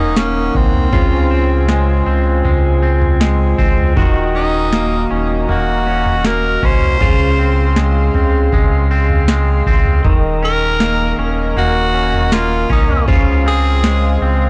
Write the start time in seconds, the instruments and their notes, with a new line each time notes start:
Already playing: sub bass D#1, clean electric guitar D#3 A#3 C#4 F#4, tenor saxophone D#4, tonewheel organ D#4 A#4 F#5
0.17 clean electric guitar A#3, tenor saxophone C#4, snare
0.55 sub bass C2, tenor saxophone C4, kick
0.74 floor tom
0.93 sub bass C#2, clean electric guitar C#3 F4, tonewheel organ F4 C5 G#5, kick, floor tom
1.30 clean electric guitar C4
1.68 clean electric guitar G#3, snare
2.06 sub bass C#2, clean electric guitar C4
2.44 sub bass C#2, clean electric guitar G#3, floor tom
2.82 clean electric guitar C4
3.02 floor tom
3.20 clean electric guitar G#3, snare
3.58 sub bass C#2, clean electric guitar C4, kick
3.78 floor tom
3.97 sub bass D#1, clean electric guitar D#3 F#4, tonewheel organ F#4 D#5 A#5, kick, floor tom
4.35 clean electric guitar C#4, tenor saxophone D#4
4.73 clean electric guitar A#3, snare
5.11 sub bass D#1, clean electric guitar C#4
5.49 sub bass D#1, clean electric guitar A#3, tenor saxophone F#4, floor tom
5.87 clean electric guitar C#4
6.06 floor tom
6.25 clean electric guitar A#3, tenor saxophone A#4, snare
6.63 sub bass C2, clean electric guitar C#4, tenor saxophone C5, kick
6.82 floor tom
7.01 sub bass C#2, clean electric guitar C#3 F4, tonewheel organ G#4 F5 C6, kick, floor tom
7.39 clean electric guitar C4
7.76 clean electric guitar G#3, snare
8.14 sub bass C#2, clean electric guitar C4, floor tom
8.52 sub bass C#2, clean electric guitar G#3, kick, floor tom
8.91 clean electric guitar C4
9.10 floor tom
9.28 clean electric guitar G#3, snare
9.66 sub bass C#2, clean electric guitar C4, kick
9.85 floor tom
10.04 sub bass D#1, clean electric guitar D#3, tonewheel organ A#4 D#5 A#5, kick, floor tom
10.42 clean electric guitar C#4, tenor saxophone A#4
10.80 clean electric guitar A#3, snare
11.18 sub bass D#1, clean electric guitar C#4
11.56 sub bass D#1, clean electric guitar A#3, tenor saxophone F#4, floor tom
11.94 clean electric guitar C#4
12.13 floor tom
12.32 clean electric guitar A#3, tenor saxophone F4, snare
12.70 sub bass C2, clean electric guitar C#4, tenor saxophone D#4, kick
12.89 floor tom
13.08 sub bass C#2, clean electric guitar C#3 F4, tonewheel organ C5 F5 G#5, kick, floor tom
13.46 clean electric guitar C4, tenor saxophone G#4
13.84 clean electric guitar G#3, snare
14.22 sub bass C#2, clean electric guitar C4